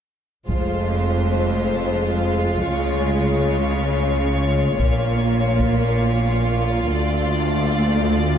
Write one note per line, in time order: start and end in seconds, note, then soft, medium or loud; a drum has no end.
0.48 2.60 F1 soft
0.48 2.60 F2 soft
0.48 4.75 G#3 soft
0.48 4.76 F4 soft
0.48 2.60 C5 soft
0.48 taiko soft
2.64 4.80 C#2 soft
2.64 4.80 C#3 soft
2.64 6.89 C#5 soft
4.79 6.89 A#1 soft
4.79 6.89 A#2 soft
4.79 6.89 A#3 soft
4.79 8.38 F4 soft
4.79 taiko soft
5.60 taiko soft
6.92 8.38 D2 soft
6.92 8.38 A3 medium
6.92 8.38 D5 soft